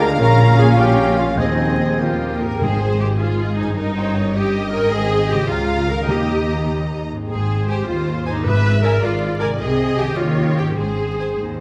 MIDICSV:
0, 0, Header, 1, 13, 480
1, 0, Start_track
1, 0, Key_signature, -4, "major"
1, 0, Tempo, 399734
1, 239, Time_signature, 6, 3, 24, 8
1, 3132, Tempo, 384369
1, 6492, Tempo, 398406
1, 9372, Tempo, 381922
1, 12252, Tempo, 404585
1, 14177, End_track
2, 0, Start_track
2, 0, Title_t, "Flute"
2, 0, Program_c, 0, 73
2, 14, Note_on_c, 0, 82, 81
2, 86, Note_off_c, 0, 82, 0
2, 234, Note_on_c, 0, 82, 87
2, 694, Note_off_c, 0, 82, 0
2, 709, Note_on_c, 0, 80, 71
2, 934, Note_off_c, 0, 80, 0
2, 941, Note_on_c, 0, 79, 69
2, 1410, Note_off_c, 0, 79, 0
2, 1417, Note_on_c, 0, 77, 58
2, 1489, Note_off_c, 0, 77, 0
2, 1654, Note_on_c, 0, 75, 56
2, 2380, Note_off_c, 0, 75, 0
2, 14177, End_track
3, 0, Start_track
3, 0, Title_t, "Oboe"
3, 0, Program_c, 1, 68
3, 0, Note_on_c, 1, 77, 73
3, 225, Note_off_c, 1, 77, 0
3, 238, Note_on_c, 1, 77, 74
3, 1661, Note_on_c, 1, 80, 54
3, 1679, Note_off_c, 1, 77, 0
3, 2404, Note_on_c, 1, 79, 48
3, 2422, Note_off_c, 1, 80, 0
3, 2892, Note_off_c, 1, 79, 0
3, 14177, End_track
4, 0, Start_track
4, 0, Title_t, "Violin section"
4, 0, Program_c, 2, 48
4, 9, Note_on_c, 2, 82, 80
4, 226, Note_off_c, 2, 82, 0
4, 241, Note_on_c, 2, 82, 82
4, 697, Note_off_c, 2, 82, 0
4, 711, Note_on_c, 2, 80, 74
4, 943, Note_on_c, 2, 79, 70
4, 946, Note_off_c, 2, 80, 0
4, 1425, Note_off_c, 2, 79, 0
4, 1432, Note_on_c, 2, 77, 63
4, 1670, Note_on_c, 2, 75, 55
4, 1671, Note_off_c, 2, 77, 0
4, 2403, Note_off_c, 2, 75, 0
4, 3142, Note_on_c, 2, 68, 41
4, 3142, Note_on_c, 2, 75, 41
4, 3363, Note_off_c, 2, 68, 0
4, 3363, Note_off_c, 2, 75, 0
4, 3391, Note_on_c, 2, 72, 37
4, 3393, Note_on_c, 2, 80, 37
4, 3625, Note_off_c, 2, 72, 0
4, 3626, Note_off_c, 2, 80, 0
4, 3628, Note_on_c, 2, 75, 37
4, 3630, Note_on_c, 2, 68, 38
4, 3865, Note_off_c, 2, 75, 0
4, 3866, Note_off_c, 2, 68, 0
4, 3876, Note_on_c, 2, 72, 39
4, 3878, Note_on_c, 2, 80, 40
4, 4108, Note_off_c, 2, 72, 0
4, 4109, Note_off_c, 2, 80, 0
4, 4128, Note_on_c, 2, 75, 38
4, 4135, Note_on_c, 2, 68, 36
4, 4338, Note_off_c, 2, 75, 0
4, 4341, Note_off_c, 2, 68, 0
4, 4360, Note_on_c, 2, 72, 37
4, 4364, Note_on_c, 2, 80, 38
4, 4590, Note_off_c, 2, 72, 0
4, 4592, Note_off_c, 2, 80, 0
4, 4593, Note_on_c, 2, 70, 43
4, 4596, Note_on_c, 2, 75, 41
4, 4811, Note_off_c, 2, 70, 0
4, 4813, Note_off_c, 2, 75, 0
4, 4843, Note_on_c, 2, 79, 40
4, 4844, Note_on_c, 2, 73, 39
4, 5072, Note_off_c, 2, 79, 0
4, 5073, Note_off_c, 2, 73, 0
4, 5074, Note_on_c, 2, 75, 43
4, 5082, Note_on_c, 2, 70, 42
4, 5306, Note_off_c, 2, 75, 0
4, 5310, Note_off_c, 2, 70, 0
4, 5328, Note_on_c, 2, 73, 45
4, 5329, Note_on_c, 2, 79, 47
4, 5552, Note_off_c, 2, 73, 0
4, 5552, Note_off_c, 2, 79, 0
4, 5572, Note_on_c, 2, 70, 44
4, 5573, Note_on_c, 2, 75, 45
4, 5777, Note_off_c, 2, 70, 0
4, 5777, Note_off_c, 2, 75, 0
4, 5799, Note_on_c, 2, 79, 48
4, 5801, Note_on_c, 2, 73, 45
4, 6025, Note_off_c, 2, 73, 0
4, 6025, Note_off_c, 2, 79, 0
4, 6042, Note_on_c, 2, 75, 57
4, 6043, Note_on_c, 2, 72, 52
4, 6692, Note_off_c, 2, 75, 0
4, 6693, Note_off_c, 2, 72, 0
4, 6730, Note_on_c, 2, 82, 53
4, 6733, Note_on_c, 2, 77, 57
4, 7425, Note_off_c, 2, 82, 0
4, 7440, Note_on_c, 2, 82, 47
4, 7444, Note_off_c, 2, 77, 0
4, 7444, Note_on_c, 2, 75, 47
4, 8637, Note_off_c, 2, 82, 0
4, 8639, Note_off_c, 2, 75, 0
4, 9384, Note_on_c, 2, 72, 44
4, 9384, Note_on_c, 2, 80, 43
4, 9492, Note_off_c, 2, 72, 0
4, 9492, Note_off_c, 2, 80, 0
4, 10097, Note_on_c, 2, 72, 44
4, 10099, Note_on_c, 2, 80, 47
4, 10210, Note_off_c, 2, 72, 0
4, 10211, Note_off_c, 2, 80, 0
4, 10812, Note_on_c, 2, 74, 52
4, 10812, Note_on_c, 2, 80, 51
4, 10921, Note_off_c, 2, 74, 0
4, 10921, Note_off_c, 2, 80, 0
4, 11513, Note_on_c, 2, 74, 57
4, 11517, Note_on_c, 2, 80, 51
4, 11630, Note_off_c, 2, 74, 0
4, 11632, Note_off_c, 2, 80, 0
4, 12245, Note_on_c, 2, 75, 51
4, 12247, Note_on_c, 2, 80, 50
4, 12356, Note_off_c, 2, 75, 0
4, 12357, Note_off_c, 2, 80, 0
4, 12954, Note_on_c, 2, 79, 39
4, 12963, Note_on_c, 2, 73, 39
4, 13069, Note_off_c, 2, 79, 0
4, 13074, Note_off_c, 2, 73, 0
4, 13686, Note_on_c, 2, 72, 36
4, 13690, Note_on_c, 2, 80, 35
4, 13799, Note_off_c, 2, 72, 0
4, 13801, Note_off_c, 2, 80, 0
4, 14177, End_track
5, 0, Start_track
5, 0, Title_t, "Violin section"
5, 0, Program_c, 3, 48
5, 0, Note_on_c, 3, 77, 83
5, 1616, Note_off_c, 3, 77, 0
5, 1681, Note_on_c, 3, 75, 56
5, 2850, Note_off_c, 3, 75, 0
5, 3129, Note_on_c, 3, 72, 53
5, 3807, Note_off_c, 3, 72, 0
5, 3864, Note_on_c, 3, 68, 48
5, 4568, Note_off_c, 3, 68, 0
5, 4587, Note_on_c, 3, 70, 52
5, 4825, Note_off_c, 3, 70, 0
5, 4828, Note_on_c, 3, 72, 47
5, 5060, Note_off_c, 3, 72, 0
5, 5067, Note_on_c, 3, 73, 51
5, 5298, Note_on_c, 3, 75, 67
5, 5303, Note_off_c, 3, 73, 0
5, 6724, Note_off_c, 3, 75, 0
5, 6730, Note_on_c, 3, 77, 67
5, 7435, Note_on_c, 3, 75, 56
5, 7442, Note_off_c, 3, 77, 0
5, 8515, Note_off_c, 3, 75, 0
5, 8902, Note_on_c, 3, 72, 51
5, 10289, Note_off_c, 3, 72, 0
5, 10349, Note_on_c, 3, 76, 62
5, 11052, Note_off_c, 3, 76, 0
5, 11052, Note_on_c, 3, 74, 50
5, 11766, Note_on_c, 3, 75, 60
5, 11767, Note_off_c, 3, 74, 0
5, 12483, Note_on_c, 3, 73, 54
5, 12485, Note_off_c, 3, 75, 0
5, 13202, Note_off_c, 3, 73, 0
5, 13204, Note_on_c, 3, 72, 38
5, 14177, Note_off_c, 3, 72, 0
5, 14177, End_track
6, 0, Start_track
6, 0, Title_t, "Clarinet"
6, 0, Program_c, 4, 71
6, 13, Note_on_c, 4, 70, 94
6, 116, Note_off_c, 4, 70, 0
6, 237, Note_on_c, 4, 70, 97
6, 696, Note_off_c, 4, 70, 0
6, 705, Note_on_c, 4, 68, 85
6, 812, Note_off_c, 4, 68, 0
6, 944, Note_on_c, 4, 67, 86
6, 1416, Note_off_c, 4, 67, 0
6, 1424, Note_on_c, 4, 65, 71
6, 1533, Note_off_c, 4, 65, 0
6, 1673, Note_on_c, 4, 63, 64
6, 2390, Note_off_c, 4, 63, 0
6, 13924, Note_on_c, 4, 63, 46
6, 14177, Note_off_c, 4, 63, 0
6, 14177, End_track
7, 0, Start_track
7, 0, Title_t, "Viola section"
7, 0, Program_c, 5, 48
7, 0, Note_on_c, 5, 56, 82
7, 0, Note_on_c, 5, 65, 84
7, 193, Note_off_c, 5, 56, 0
7, 193, Note_off_c, 5, 65, 0
7, 243, Note_on_c, 5, 65, 77
7, 247, Note_on_c, 5, 61, 73
7, 1621, Note_off_c, 5, 65, 0
7, 1624, Note_off_c, 5, 61, 0
7, 1674, Note_on_c, 5, 68, 53
7, 1676, Note_on_c, 5, 60, 53
7, 2357, Note_off_c, 5, 68, 0
7, 2358, Note_off_c, 5, 60, 0
7, 2400, Note_on_c, 5, 65, 59
7, 2405, Note_on_c, 5, 58, 48
7, 2405, Note_on_c, 5, 67, 47
7, 2856, Note_off_c, 5, 65, 0
7, 2859, Note_off_c, 5, 58, 0
7, 2859, Note_off_c, 5, 67, 0
7, 2886, Note_on_c, 5, 70, 61
7, 3129, Note_off_c, 5, 70, 0
7, 3129, Note_on_c, 5, 68, 56
7, 3612, Note_on_c, 5, 67, 59
7, 3615, Note_off_c, 5, 68, 0
7, 3710, Note_off_c, 5, 67, 0
7, 3848, Note_on_c, 5, 65, 56
7, 4324, Note_off_c, 5, 65, 0
7, 4330, Note_on_c, 5, 63, 56
7, 4556, Note_off_c, 5, 63, 0
7, 4571, Note_on_c, 5, 63, 66
7, 5281, Note_off_c, 5, 63, 0
7, 5298, Note_on_c, 5, 67, 66
7, 5765, Note_off_c, 5, 67, 0
7, 5767, Note_on_c, 5, 70, 74
7, 6003, Note_off_c, 5, 70, 0
7, 6010, Note_on_c, 5, 68, 82
7, 6486, Note_on_c, 5, 67, 75
7, 6490, Note_off_c, 5, 68, 0
7, 6717, Note_on_c, 5, 65, 67
7, 6723, Note_off_c, 5, 67, 0
7, 7186, Note_off_c, 5, 65, 0
7, 7199, Note_on_c, 5, 70, 69
7, 7440, Note_off_c, 5, 70, 0
7, 7440, Note_on_c, 5, 67, 64
7, 8168, Note_off_c, 5, 67, 0
7, 8902, Note_on_c, 5, 68, 59
7, 9339, Note_off_c, 5, 68, 0
7, 9372, Note_on_c, 5, 67, 59
7, 9611, Note_off_c, 5, 67, 0
7, 9619, Note_on_c, 5, 65, 54
7, 10093, Note_off_c, 5, 65, 0
7, 10105, Note_on_c, 5, 63, 61
7, 10337, Note_off_c, 5, 63, 0
7, 10341, Note_on_c, 5, 71, 76
7, 10807, Note_on_c, 5, 70, 75
7, 10812, Note_off_c, 5, 71, 0
7, 11041, Note_off_c, 5, 70, 0
7, 11046, Note_on_c, 5, 65, 71
7, 11522, Note_on_c, 5, 70, 72
7, 11523, Note_off_c, 5, 65, 0
7, 11618, Note_off_c, 5, 70, 0
7, 11761, Note_on_c, 5, 68, 66
7, 12240, Note_off_c, 5, 68, 0
7, 12246, Note_on_c, 5, 67, 68
7, 12480, Note_on_c, 5, 65, 60
7, 12481, Note_off_c, 5, 67, 0
7, 12957, Note_off_c, 5, 65, 0
7, 12959, Note_on_c, 5, 67, 53
7, 13202, Note_off_c, 5, 67, 0
7, 13204, Note_on_c, 5, 68, 51
7, 13915, Note_off_c, 5, 68, 0
7, 14177, End_track
8, 0, Start_track
8, 0, Title_t, "Harp"
8, 0, Program_c, 6, 46
8, 0, Note_on_c, 6, 50, 73
8, 0, Note_on_c, 6, 65, 61
8, 0, Note_on_c, 6, 68, 58
8, 0, Note_on_c, 6, 70, 57
8, 0, Note_on_c, 6, 77, 67
8, 0, Note_on_c, 6, 80, 67
8, 10, Note_on_c, 6, 58, 57
8, 120, Note_on_c, 6, 56, 56
8, 238, Note_on_c, 6, 46, 71
8, 256, Note_off_c, 6, 50, 0
8, 256, Note_off_c, 6, 56, 0
8, 259, Note_off_c, 6, 68, 0
8, 260, Note_off_c, 6, 80, 0
8, 356, Note_on_c, 6, 61, 52
8, 465, Note_off_c, 6, 65, 0
8, 479, Note_on_c, 6, 65, 55
8, 578, Note_off_c, 6, 70, 0
8, 707, Note_on_c, 6, 73, 57
8, 815, Note_off_c, 6, 77, 0
8, 829, Note_on_c, 6, 77, 55
8, 945, Note_on_c, 6, 82, 58
8, 1051, Note_off_c, 6, 77, 0
8, 1066, Note_on_c, 6, 77, 51
8, 1164, Note_off_c, 6, 73, 0
8, 1305, Note_on_c, 6, 70, 48
8, 1409, Note_off_c, 6, 61, 0
8, 1423, Note_on_c, 6, 61, 46
8, 1551, Note_on_c, 6, 53, 42
8, 1671, Note_on_c, 6, 51, 52
8, 1686, Note_off_c, 6, 61, 0
8, 1687, Note_off_c, 6, 46, 0
8, 1687, Note_off_c, 6, 58, 0
8, 1687, Note_off_c, 6, 70, 0
8, 1688, Note_off_c, 6, 77, 0
8, 1688, Note_off_c, 6, 82, 0
8, 1690, Note_off_c, 6, 53, 0
8, 1691, Note_off_c, 6, 65, 0
8, 1797, Note_on_c, 6, 63, 40
8, 1924, Note_on_c, 6, 68, 42
8, 2047, Note_on_c, 6, 72, 40
8, 2168, Note_on_c, 6, 75, 44
8, 2291, Note_on_c, 6, 80, 43
8, 2398, Note_off_c, 6, 51, 0
8, 2412, Note_on_c, 6, 51, 51
8, 2427, Note_off_c, 6, 68, 0
8, 2427, Note_off_c, 6, 80, 0
8, 2428, Note_off_c, 6, 72, 0
8, 2517, Note_off_c, 6, 63, 0
8, 2531, Note_on_c, 6, 63, 38
8, 2654, Note_on_c, 6, 67, 38
8, 2774, Note_on_c, 6, 70, 41
8, 2887, Note_off_c, 6, 75, 0
8, 2902, Note_on_c, 6, 75, 41
8, 2921, Note_on_c, 6, 44, 41
8, 2974, Note_on_c, 6, 60, 34
8, 3013, Note_on_c, 6, 79, 38
8, 3014, Note_off_c, 6, 63, 0
8, 3028, Note_on_c, 6, 63, 32
8, 3083, Note_on_c, 6, 68, 34
8, 3151, Note_off_c, 6, 79, 0
8, 3154, Note_off_c, 6, 70, 0
8, 3155, Note_off_c, 6, 67, 0
8, 3157, Note_off_c, 6, 51, 0
8, 4359, Note_on_c, 6, 43, 41
8, 4415, Note_on_c, 6, 61, 37
8, 4456, Note_off_c, 6, 63, 0
8, 4471, Note_on_c, 6, 63, 34
8, 4489, Note_off_c, 6, 44, 0
8, 4517, Note_off_c, 6, 60, 0
8, 4527, Note_on_c, 6, 70, 36
8, 4574, Note_off_c, 6, 68, 0
8, 5795, Note_on_c, 6, 44, 50
8, 5847, Note_on_c, 6, 60, 43
8, 5891, Note_off_c, 6, 63, 0
8, 5906, Note_on_c, 6, 63, 42
8, 5921, Note_off_c, 6, 43, 0
8, 5949, Note_off_c, 6, 61, 0
8, 5961, Note_on_c, 6, 68, 41
8, 6005, Note_off_c, 6, 70, 0
8, 6509, Note_on_c, 6, 49, 52
8, 6565, Note_on_c, 6, 58, 42
8, 6620, Note_on_c, 6, 65, 43
8, 6639, Note_off_c, 6, 44, 0
8, 6665, Note_off_c, 6, 60, 0
8, 6674, Note_on_c, 6, 70, 43
8, 6693, Note_off_c, 6, 63, 0
8, 6719, Note_off_c, 6, 68, 0
8, 6749, Note_off_c, 6, 75, 0
8, 7226, Note_on_c, 6, 51, 43
8, 7265, Note_off_c, 6, 58, 0
8, 7280, Note_on_c, 6, 58, 35
8, 7334, Note_on_c, 6, 63, 36
8, 7351, Note_off_c, 6, 49, 0
8, 7373, Note_off_c, 6, 70, 0
8, 7387, Note_on_c, 6, 70, 36
8, 7407, Note_off_c, 6, 65, 0
8, 8686, Note_on_c, 6, 44, 36
8, 8739, Note_on_c, 6, 60, 30
8, 8779, Note_off_c, 6, 63, 0
8, 8793, Note_on_c, 6, 63, 32
8, 8813, Note_off_c, 6, 51, 0
8, 8840, Note_off_c, 6, 58, 0
8, 8850, Note_on_c, 6, 68, 31
8, 8894, Note_off_c, 6, 70, 0
8, 10106, Note_off_c, 6, 44, 0
8, 10122, Note_on_c, 6, 44, 44
8, 10177, Note_on_c, 6, 62, 36
8, 10233, Note_on_c, 6, 65, 38
8, 10273, Note_off_c, 6, 60, 0
8, 10276, Note_off_c, 6, 68, 0
8, 10291, Note_on_c, 6, 68, 34
8, 10302, Note_off_c, 6, 63, 0
8, 11546, Note_on_c, 6, 48, 49
8, 11602, Note_on_c, 6, 60, 40
8, 11660, Note_on_c, 6, 63, 40
8, 11675, Note_off_c, 6, 44, 0
8, 11700, Note_off_c, 6, 68, 0
8, 11703, Note_off_c, 6, 62, 0
8, 11715, Note_on_c, 6, 68, 41
8, 11731, Note_off_c, 6, 65, 0
8, 12276, Note_on_c, 6, 51, 44
8, 12329, Note_on_c, 6, 61, 37
8, 12367, Note_off_c, 6, 63, 0
8, 12381, Note_on_c, 6, 63, 36
8, 12400, Note_off_c, 6, 48, 0
8, 12435, Note_on_c, 6, 67, 38
8, 12480, Note_off_c, 6, 68, 0
8, 12989, Note_on_c, 6, 44, 31
8, 13027, Note_off_c, 6, 60, 0
8, 13041, Note_on_c, 6, 60, 26
8, 13081, Note_off_c, 6, 63, 0
8, 13095, Note_on_c, 6, 63, 25
8, 13118, Note_off_c, 6, 51, 0
8, 13144, Note_off_c, 6, 61, 0
8, 13151, Note_on_c, 6, 68, 26
8, 13198, Note_off_c, 6, 67, 0
8, 14177, Note_off_c, 6, 44, 0
8, 14177, Note_off_c, 6, 60, 0
8, 14177, Note_off_c, 6, 63, 0
8, 14177, Note_off_c, 6, 68, 0
8, 14177, End_track
9, 0, Start_track
9, 0, Title_t, "French horn section"
9, 0, Program_c, 7, 60
9, 0, Note_on_c, 7, 62, 92
9, 212, Note_off_c, 7, 62, 0
9, 241, Note_on_c, 7, 61, 89
9, 1640, Note_off_c, 7, 61, 0
9, 1670, Note_on_c, 7, 60, 65
9, 2769, Note_off_c, 7, 60, 0
9, 14177, End_track
10, 0, Start_track
10, 0, Title_t, "Bassoon"
10, 0, Program_c, 8, 70
10, 0, Note_on_c, 8, 56, 74
10, 241, Note_on_c, 8, 61, 69
10, 259, Note_off_c, 8, 56, 0
10, 1657, Note_off_c, 8, 61, 0
10, 1664, Note_on_c, 8, 60, 54
10, 2399, Note_on_c, 8, 58, 50
10, 2417, Note_off_c, 8, 60, 0
10, 2890, Note_off_c, 8, 58, 0
10, 14177, End_track
11, 0, Start_track
11, 0, Title_t, "Cello section"
11, 0, Program_c, 10, 48
11, 0, Note_on_c, 10, 50, 80
11, 242, Note_off_c, 10, 50, 0
11, 245, Note_on_c, 10, 46, 75
11, 1642, Note_off_c, 10, 46, 0
11, 1671, Note_on_c, 10, 39, 60
11, 2893, Note_off_c, 10, 39, 0
11, 3136, Note_on_c, 10, 44, 46
11, 4532, Note_off_c, 10, 44, 0
11, 4589, Note_on_c, 10, 43, 47
11, 6017, Note_off_c, 10, 43, 0
11, 6019, Note_on_c, 10, 44, 55
11, 6680, Note_off_c, 10, 44, 0
11, 6725, Note_on_c, 10, 37, 54
11, 7426, Note_off_c, 10, 37, 0
11, 7443, Note_on_c, 10, 39, 48
11, 8663, Note_off_c, 10, 39, 0
11, 8916, Note_on_c, 10, 44, 47
11, 9501, Note_off_c, 10, 44, 0
11, 9629, Note_on_c, 10, 39, 45
11, 10227, Note_off_c, 10, 39, 0
11, 10348, Note_on_c, 10, 44, 53
11, 10933, Note_off_c, 10, 44, 0
11, 11060, Note_on_c, 10, 44, 56
11, 11650, Note_off_c, 10, 44, 0
11, 11773, Note_on_c, 10, 48, 59
11, 12372, Note_off_c, 10, 48, 0
11, 12490, Note_on_c, 10, 51, 51
11, 13084, Note_off_c, 10, 51, 0
11, 13206, Note_on_c, 10, 44, 40
11, 13810, Note_off_c, 10, 44, 0
11, 13937, Note_on_c, 10, 39, 36
11, 14177, Note_off_c, 10, 39, 0
11, 14177, End_track
12, 0, Start_track
12, 0, Title_t, "Timpani"
12, 0, Program_c, 11, 47
12, 3136, Note_on_c, 11, 44, 59
12, 3811, Note_off_c, 11, 44, 0
12, 7436, Note_on_c, 11, 51, 57
12, 8118, Note_off_c, 11, 51, 0
12, 10344, Note_on_c, 11, 44, 56
12, 11000, Note_off_c, 11, 44, 0
12, 14177, End_track
13, 0, Start_track
13, 0, Title_t, "Double bass section"
13, 0, Program_c, 12, 48
13, 0, Note_on_c, 12, 38, 80
13, 240, Note_off_c, 12, 38, 0
13, 243, Note_on_c, 12, 34, 77
13, 1641, Note_off_c, 12, 34, 0
13, 1663, Note_on_c, 12, 39, 62
13, 2889, Note_off_c, 12, 39, 0
13, 3126, Note_on_c, 12, 32, 49
13, 4527, Note_off_c, 12, 32, 0
13, 4580, Note_on_c, 12, 31, 52
13, 6012, Note_off_c, 12, 31, 0
13, 6012, Note_on_c, 12, 32, 58
13, 6677, Note_off_c, 12, 32, 0
13, 6724, Note_on_c, 12, 37, 59
13, 7425, Note_off_c, 12, 37, 0
13, 7438, Note_on_c, 12, 39, 50
13, 8661, Note_off_c, 12, 39, 0
13, 8904, Note_on_c, 12, 32, 49
13, 9495, Note_off_c, 12, 32, 0
13, 9619, Note_on_c, 12, 39, 50
13, 10221, Note_off_c, 12, 39, 0
13, 10343, Note_on_c, 12, 32, 57
13, 10930, Note_off_c, 12, 32, 0
13, 11045, Note_on_c, 12, 32, 59
13, 11642, Note_off_c, 12, 32, 0
13, 11760, Note_on_c, 12, 36, 61
13, 12365, Note_off_c, 12, 36, 0
13, 12478, Note_on_c, 12, 39, 56
13, 13078, Note_off_c, 12, 39, 0
13, 13202, Note_on_c, 12, 32, 42
13, 13808, Note_off_c, 12, 32, 0
13, 13929, Note_on_c, 12, 39, 37
13, 14177, Note_off_c, 12, 39, 0
13, 14177, End_track
0, 0, End_of_file